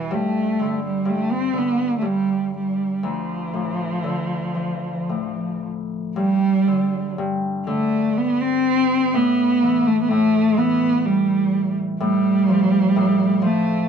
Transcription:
Already playing: E2 B2 E3 G3
0.11 G2 A3
0.60 D3
0.85 G3
1.05 G2
1.09 A3
1.32 C4
1.53 D3
1.58 B3
1.98 G2 A3
2.06 G3
2.58 G3
2.98 G3
3.03 D2 F3
3.54 A2
4.04 D3
4.55 F3
5.09 A2
6.16 G2 G3
6.67 D3
7.18 G2
7.67 D3 A3
8.18 B3
8.41 C4
9.14 A2 B3
9.63 E3
9.87 A3
10.01 B3
10.09 A2 A3
10.57 E3 B3
11.05 G3
12.00 A2 G3
12.49 F3
12.96 A2
13.42 F3 A3

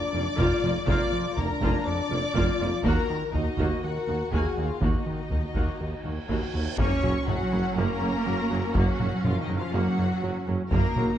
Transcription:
Already playing: D4 D5 D6
0.14 F1 F2 A#3 F4
0.38 F1 F2 A#3 F4, taiko
0.62 F1 F2 A#3 F4
0.87 F1 F2 A#3 F4 D5 D6, taiko
1.12 F3
1.37 F1 F2 A#3 D4 F4 A#4 A#5, taiko low
1.61 F1 F2 A#3 F4, taiko
1.86 F2 D5 D6
2.11 F1 F2 A#3 F4
2.35 F1 F2 A#3 F4, taiko
2.60 F1 F2 A#3 F4
2.84 D#2 A#3 F#4 A#4 A#5, taiko
3.10 D#3
3.33 D#2 A#3 D#4 F#4 D#5, taiko low
3.58 D#2 A#3 F#4, taiko
3.83 D#2 F#4 A#4 F#5
4.07 D#2 A#3 F#4
4.32 D#2 A#3 F#4 G#4 G#5, taiko
4.49 F#4 F#5
4.57 D#2 A#3 F#4
4.66 F4 F5
4.80 D#2 A#3 D#4 F#4 D#5, taiko, reverse cymbal
5.06 D#3
5.31 D#2 A#3 F#4, taiko low
5.55 D#2 A#3 F#4, taiko
5.80 D#2
6.04 D#2 A#3 F#4
6.29 D#2 A#3 F#4, taiko
6.53 D#2 A#3 F#4
6.77 F#1 F#2 A#3 C#4 C#5 C#6, taiko, sub drop
7.02 F#1 F#2 F#3 A#3, taiko mid
7.25 F#1 F#2 F#3 F#4 F#5, taiko mid
7.52 F#1 F#2 F#3 A#3, taiko rim
7.75 F#1 F#2 A#3 A#4 A#5
8.01 F#1 F#2 A#3
8.26 F#1 F#2 F#3
8.50 F#1 F#2 F#3 A#3
8.74 F#1 F#2 F#3 A#3 F#4 F#5, taiko
9.00 F#1 F#2 F#3 A#3, taiko mid
9.23 F#1 F#2 F3 F#3 F4 F5, taiko mid
9.40 D#3 D#4 D#5
9.49 F#1 F#2 F#3 A#3
9.56 F3 F4 F5
9.73 F#1 F#2 F#3 A#3 F#4 F#5
9.97 F#1 F#2 A#3
10.22 F#1 F#2 F#3
10.47 F#1 F#2 F#3 A#3
10.71 F#1 F#2 A#3 D#4 A#4 A#5, taiko
10.96 F#1 F#2 F#3 A#3, taiko mid

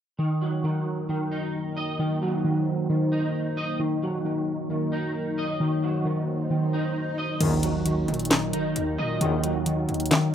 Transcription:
0.19 D#3 F#3 A#3 D#4 A#4
0.41 F#3
0.64 D#3
1.09 D#3
1.32 D#4
1.77 D#5
1.99 D#3 C5
2.22 F#3
2.44 D#3
2.89 D#3
3.12 D#4
3.57 D#5
3.79 D#3 F#3 A#4
4.02 F#3
4.25 D#3
4.70 D#3
4.92 D#4
5.38 D#5
5.60 D#3 C5, swell
5.83 F#3
6.05 D#3
6.50 D#3
6.73 D#4
7.18 D#5
7.40 A#1 D#2 F#2 D#3 F#3 A#3 D#4 A#4, closed hi-hat, crash, impact
7.63 F#3, closed hi-hat
7.86 D#3, closed hi-hat
8.08 A#2, closed hi-hat
8.14 closed hi-hat
8.19 closed hi-hat
8.25 closed hi-hat
8.31 D#3, snare, clap, closed hi-hat
8.53 D#3 D#4, closed hi-hat
8.76 D#2, closed hi-hat
8.98 A#2 D#5
9.21 A#1 D#2 F#2 D#3, closed hi-hat
9.44 F#3, closed hi-hat
9.66 D#3, closed hi-hat
9.89 D#2, closed hi-hat
9.94 closed hi-hat
10.00 closed hi-hat
10.06 closed hi-hat
10.11 D#3, snare, clap, closed hi-hat

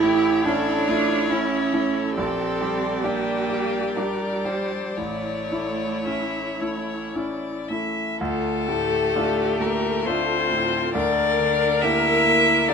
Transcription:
Already playing: A1 E4 C#5
0.02 A3 E4 G4
0.45 C#4 D4 E4 A4
0.88 A3 E4 F4
1.30 C#4 E4
1.73 A3 E4 A4
2.16 A#1 C4 G4 D5
2.61 G3 G4
3.04 A#3 D4 G4
3.49 G3 G4
3.96 G3 D4 G4 A#4
4.45 G3 G4 C5
4.97 A1 A3 E4 C#5
5.51 A3 E4
6.06 C#4 E4 E5
6.60 A3 E4 C#5
7.15 C#4 E4 D5
7.68 A3 E4 E5
8.20 D2 A3 F4 A4
8.68 A2 G4
9.15 A3 D4 F4
9.60 A3 A#3 A#4
10.06 A3 C4 D4 F4 C5
10.51 A2
10.94 D2 A#3 D4 A#4 D5
11.40 D3
11.81 A#3 D4 E4 G4 E5
12.26 A#3
12.68 A#3 D4 G4 A4 D5

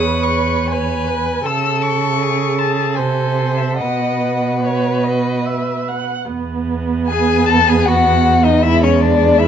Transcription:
Already playing: E2 B4 C#5 D#6
0.23 C#6
0.70 B4 C#5 G#5
1.08 B4
1.45 C#3 A4 E6
1.82 C#6
2.22 G#4
2.58 G#4 A5
2.95 C3 A4 C5 G#5
3.58 E5
3.77 B2 B4 D#5 F#5
4.63 C#5
5.04 D#5
5.46 E5
5.88 F#5
6.28 E2 B3
7.07 G#4 G#5
7.46 A4 A5
7.68 G#4 G#5
7.86 F#4 F#5
8.44 D#4 D#5
8.63 G#3 E4 E5
8.83 C#4 C#5
9.01 D4 D5
9.38 E4 E5

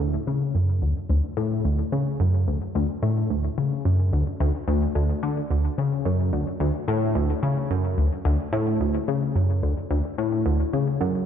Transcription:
0.00 D2
0.27 C#3
0.55 F#2
0.82 D2
1.10 D2
1.37 A2
1.65 D2
1.92 C#3
2.20 F#2
2.48 D2
2.75 D2
3.03 A2
3.30 D2
3.58 C#3
3.85 F#2
4.13 D2
4.40 D2
4.68 D2
4.95 D2
5.23 D3
5.50 D2
5.78 C#3
6.05 F#2
6.33 D2
6.60 D2
6.88 A2
7.15 D2
7.43 C#3
7.70 F#2
7.98 D2
8.25 D2
8.53 A2
8.80 D2
9.08 C#3
9.35 F#2
9.63 D2
9.91 D2
10.18 A2
10.46 D2
10.73 C#3
11.01 F#2

